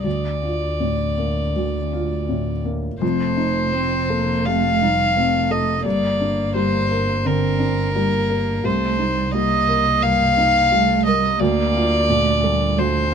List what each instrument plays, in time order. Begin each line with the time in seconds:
0.04 felt piano D2, double bass D2, violin D5
0.42 felt piano F4
0.80 felt piano A2
1.18 felt piano A#3
1.56 felt piano D2
1.92 felt piano F4
2.29 felt piano A2
2.65 felt piano A#3
3.01 double bass F1, felt piano F2, cello A3, violin C5
3.37 felt piano D#4
3.73 cello C4, felt piano C4
4.09 cello A#3, felt piano A4
4.46 felt piano C3, cello A3, violin F5
4.81 cello G3, felt piano D#4
5.16 cello A3, felt piano C4
5.51 felt piano A4, violin D#5
5.85 double bass G1, felt piano G2, cello A#3, violin D5
6.21 felt piano D4
6.55 felt piano G3, violin C5
6.91 felt piano A#4
7.25 felt piano D3, cello C4, violin A#4
7.59 felt piano D4
7.95 felt piano G3, cello A#3
8.30 felt piano A#4
8.63 felt piano C2, double bass C2, cello A3, violin C5
8.99 cello G3, felt piano D#4
9.32 felt piano G3, cello A#3, violin D#5
9.69 felt piano A#4
10.02 felt piano G2, violin F5
10.37 felt piano D#4
10.71 felt piano G3, cello A3
11.06 cello G3, felt piano A#4, violin D#5
11.39 felt piano D2, double bass D2, cello A#3, violin D5
11.74 felt piano F4
12.09 felt piano A#2, cello A3
12.44 cello G3, felt piano A4
12.77 felt piano D2, cello A3, violin C5